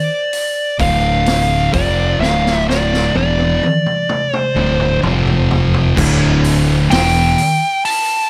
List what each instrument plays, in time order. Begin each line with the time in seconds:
Already playing: lead electric guitar D5
0.33 open hi-hat
0.79 fingered electric bass D1, distorted electric guitar D2 A2 D3, lead electric guitar F5, kick, open hi-hat
1.26 snare, open hi-hat
1.73 fingered electric bass F1, distorted electric guitar F2 C3 F3, lead electric guitar D5, kick, open hi-hat
2.19 fingered electric bass D1, distorted electric guitar D2 A2 D3, lead electric guitar F5, snare
2.46 snare
2.69 lead electric guitar D5, snare
2.94 snare
3.15 fingered electric bass E1, distorted electric guitar E2 B2 E3, lead electric guitar D5, high tom
3.39 high tom
3.63 high tom
3.86 mid tom
4.09 mid tom
4.33 lead electric guitar C5, mid tom
4.55 fingered electric bass D1, distorted electric guitar D2 A2 D3, mid tom
4.80 mid tom
5.02 fingered electric bass F1, distorted electric guitar F2 C3 F3, mid tom
5.27 floor tom
5.51 floor tom
5.74 floor tom
5.95 fingered electric bass D1, distorted electric guitar D2 A2 D3, kick, crash
6.44 open hi-hat
6.90 fingered electric bass E1, distorted electric guitar E2 B2 E3, lead electric guitar G5, snare, open hi-hat
7.38 open hi-hat
7.85 lead electric guitar A5, open hi-hat